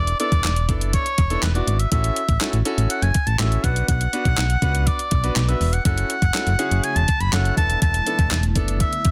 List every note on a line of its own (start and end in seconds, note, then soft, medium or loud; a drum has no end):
0.00 0.14 E1 loud
0.00 0.18 D5 loud
0.07 closed hi-hat medium
0.19 0.47 B3 medium
0.19 0.47 D4 medium
0.19 0.47 E4 medium
0.19 0.47 A4 loud
0.19 0.77 D5 loud
0.19 closed hi-hat medium
0.32 0.41 E1 loud
0.32 kick loud
0.32 closed hi-hat medium
0.44 0.70 E1 medium
0.44 snare medium
0.44 clap loud
0.44 closed hi-hat medium
0.56 closed hi-hat medium
0.69 0.97 F#1 loud
0.69 1.03 B3 medium
0.69 1.03 D4 medium
0.69 1.03 E4 medium
0.69 1.03 A4 medium
0.69 kick medium
0.69 closed hi-hat medium
0.81 closed hi-hat medium
0.93 1.39 C#5 loud
0.93 kick medium
0.93 closed hi-hat medium
1.06 closed hi-hat medium
1.18 1.37 E1 medium
1.18 kick loud
1.18 closed hi-hat medium
1.30 1.44 B3 medium
1.30 1.44 D4 medium
1.30 1.44 E4 medium
1.30 1.44 A4 loud
1.30 closed hi-hat soft
1.43 1.62 E1 loud
1.43 1.54 B4 medium
1.43 snare medium
1.43 clap loud
1.43 closed hi-hat medium
1.55 1.75 B3 medium
1.55 1.75 D4 medium
1.55 1.76 E4 medium
1.55 1.76 F#4 medium
1.55 1.81 D5 medium
1.55 closed hi-hat medium
1.67 1.86 G#1 medium
1.67 closed hi-hat medium
1.79 1.91 E5 medium
1.79 closed hi-hat medium
1.92 2.11 A1 loud
1.92 2.19 C#4 medium
1.92 2.19 E4 medium
1.92 2.19 F#4 medium
1.92 2.19 A4 medium
1.92 2.59 E5 loud
1.92 kick loud
1.92 closed hi-hat loud
2.04 closed hi-hat medium
2.16 closed hi-hat medium
2.29 2.38 A1 loud
2.29 kick loud
2.29 closed hi-hat medium
2.41 2.55 C#4 medium
2.41 2.55 E4 medium
2.41 2.55 F#4 medium
2.41 2.55 A4 loud
2.41 snare medium
2.41 clap loud
2.41 closed hi-hat medium
2.53 2.63 A1 medium
2.53 closed hi-hat medium
2.65 3.07 C#4 medium
2.65 3.07 E4 medium
2.65 3.07 F#4 medium
2.65 3.07 A4 loud
2.65 closed hi-hat medium
2.78 2.87 A1 medium
2.78 closed hi-hat medium
2.90 3.04 F#5 loud
2.90 closed hi-hat loud
3.02 3.12 F#1 medium
3.02 3.29 G#5 loud
3.02 closed hi-hat medium
3.14 kick loud
3.14 closed hi-hat medium
3.27 3.36 A1 medium
3.27 3.39 A5 medium
3.27 closed hi-hat soft
3.39 3.58 A1 loud
3.39 3.64 C#4 medium
3.39 3.64 E4 medium
3.39 3.63 F#4 medium
3.39 3.64 A4 medium
3.39 3.65 E5 medium
3.39 snare medium
3.39 clap loud
3.39 closed hi-hat medium
3.52 closed hi-hat medium
3.64 3.83 B1 loud
3.64 4.03 B3 medium
3.64 4.03 D4 medium
3.64 4.03 F#4 medium
3.64 4.03 B4 medium
3.64 3.88 F#5 medium
3.64 kick loud
3.64 closed hi-hat medium
3.76 closed hi-hat medium
3.88 4.07 B1 loud
3.88 4.89 F#5 loud
3.88 kick loud
3.88 closed hi-hat loud
4.01 closed hi-hat medium
4.13 4.41 B3 medium
4.13 4.41 D4 medium
4.13 4.41 F#4 medium
4.13 4.41 B4 medium
4.13 closed hi-hat medium
4.25 4.35 B1 loud
4.25 kick loud
4.25 closed hi-hat medium
4.38 4.57 B1 medium
4.38 snare medium
4.38 clap loud
4.38 closed hi-hat medium
4.50 closed hi-hat medium
4.62 4.91 C#2 loud
4.62 4.97 B3 loud
4.62 4.97 D4 medium
4.62 4.97 F#4 medium
4.62 4.97 B4 loud
4.62 kick medium
4.62 closed hi-hat medium
4.75 closed hi-hat medium
4.87 5.36 D5 loud
4.87 kick medium
4.87 closed hi-hat medium
4.99 closed hi-hat medium
5.11 5.31 B1 medium
5.11 kick loud
5.11 closed hi-hat medium
5.24 5.37 B3 medium
5.24 5.37 D4 medium
5.24 5.38 F#4 medium
5.24 5.38 B4 loud
5.24 closed hi-hat soft
5.36 5.55 B1 loud
5.36 5.50 D5 medium
5.36 snare medium
5.36 clap loud
5.36 closed hi-hat medium
5.48 5.69 B3 medium
5.48 5.69 D4 medium
5.48 5.69 F#4 medium
5.48 5.69 B4 medium
5.48 5.75 E5 medium
5.48 closed hi-hat medium
5.61 5.80 E1 medium
5.61 open hi-hat medium
5.73 5.85 F#5 medium
5.73 closed hi-hat medium
5.85 6.04 F#1 loud
5.85 7.56 C#3 medium
5.85 7.56 F#3 medium
5.85 9.11 A3 medium
5.85 6.13 C#4 medium
5.85 6.13 E4 medium
5.85 9.11 E4 medium
5.85 6.13 F#4 medium
5.85 6.13 A4 medium
5.85 6.86 F#5 loud
5.85 kick loud
5.85 closed hi-hat loud
5.98 closed hi-hat medium
6.10 closed hi-hat medium
6.22 6.32 F#1 loud
6.22 kick loud
6.22 closed hi-hat medium
6.34 6.48 C#4 medium
6.34 6.48 E4 medium
6.34 6.48 F#4 medium
6.34 6.48 A4 medium
6.34 snare medium
6.34 clap loud
6.34 closed hi-hat medium
6.47 6.56 F#1 medium
6.47 closed hi-hat medium
6.59 7.00 C#4 loud
6.59 7.00 E4 medium
6.59 7.00 F#4 medium
6.59 7.00 G#4 loud
6.59 closed hi-hat medium
6.71 6.81 F#1 medium
6.71 closed hi-hat medium
6.84 6.98 G#5 loud
6.84 closed hi-hat loud
6.96 7.05 E1 medium
6.96 7.22 A5 loud
6.96 closed hi-hat medium
7.08 kick loud
7.08 closed hi-hat medium
7.20 7.30 F#1 medium
7.20 7.33 B5 loud
7.20 closed hi-hat soft
7.32 7.52 F#1 loud
7.32 7.57 C#4 medium
7.32 7.56 E4 medium
7.32 7.57 F#4 medium
7.32 7.56 A4 medium
7.32 7.56 F#5 loud
7.32 snare medium
7.32 clap loud
7.32 closed hi-hat medium
7.45 closed hi-hat medium
7.57 7.76 E1 loud
7.57 9.11 D3 medium
7.57 7.97 B3 medium
7.57 9.11 B3 medium
7.57 7.97 D4 medium
7.57 7.97 A4 medium
7.57 7.80 A5 loud
7.57 kick loud
7.57 closed hi-hat medium
7.70 closed hi-hat medium
7.82 8.01 E1 loud
7.82 8.49 A5 loud
7.82 kick loud
7.82 closed hi-hat loud
7.94 closed hi-hat medium
8.06 8.34 B3 medium
8.06 8.34 D4 medium
8.06 8.34 E4 medium
8.06 8.34 A4 medium
8.06 closed hi-hat medium
8.19 8.28 E1 loud
8.19 kick loud
8.19 closed hi-hat medium
8.31 8.57 E1 loud
8.31 snare medium
8.31 clap loud
8.31 closed hi-hat medium
8.43 closed hi-hat medium
8.55 8.84 F#1 loud
8.55 8.90 B3 medium
8.55 8.90 D4 medium
8.55 8.90 E4 medium
8.55 8.90 A4 loud
8.55 kick loud
8.55 closed hi-hat medium
8.68 closed hi-hat medium
8.80 9.11 E5 loud
8.80 kick loud
8.80 closed hi-hat loud
8.93 closed hi-hat medium
9.05 9.11 E1 loud
9.05 kick loud
9.05 closed hi-hat medium